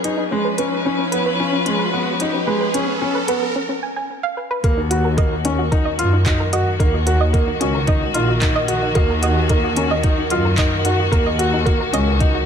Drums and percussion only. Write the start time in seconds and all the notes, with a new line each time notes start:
0.04 closed hi-hat
0.58 closed hi-hat
1.12 closed hi-hat
1.66 closed hi-hat
2.20 closed hi-hat
2.74 closed hi-hat
3.28 closed hi-hat
4.64 kick, closed hi-hat
4.91 closed hi-hat
5.18 kick, closed hi-hat
5.45 closed hi-hat
5.72 kick, closed hi-hat
5.99 closed hi-hat
6.26 kick, clap, closed hi-hat
6.53 closed hi-hat
6.80 kick, closed hi-hat
7.07 closed hi-hat
7.34 kick, closed hi-hat
7.61 closed hi-hat
7.87 kick, closed hi-hat
8.14 closed hi-hat
8.42 kick, clap, closed hi-hat
8.68 closed hi-hat
8.95 kick, closed hi-hat
9.23 closed hi-hat
9.49 kick, closed hi-hat
9.76 closed hi-hat
10.03 kick, closed hi-hat
10.30 closed hi-hat
10.58 kick, clap, closed hi-hat
10.85 closed hi-hat
11.12 kick, closed hi-hat
11.39 closed hi-hat
11.66 kick, closed hi-hat
11.94 closed hi-hat
12.20 kick, closed hi-hat